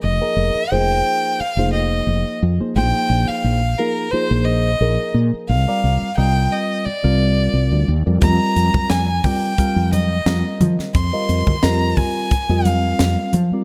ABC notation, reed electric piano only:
X:1
M:4/4
L:1/16
Q:"Swing 16ths" 1/4=88
K:Fdor
V:1 name="Reed electric piano"
z [F,B,EAB]2 z [F,B,EAc]4 z [F,B,EAc]4- [F,B,EAc] z [F,B,EAc] | [F,B,EAc]4- [F,B,EAc] z [F,B,EAB]2 [F,B,EAc]3 z [F,B,EAB]4 | z [G,CFBd]2 z [G,CFBe]4 z [G,CFBf]4- [G,CFBf] z [G,CFBd] | [G,CFBe]4- [G,CFBe] z [G,CFBd]2 [G,CFBf]3 z [G,CFBe]4 |
z [G,CFBe]2 z [G,CFBe]4 z [G,CFBe]4- [G,CFBe] z [G,CFBd] |]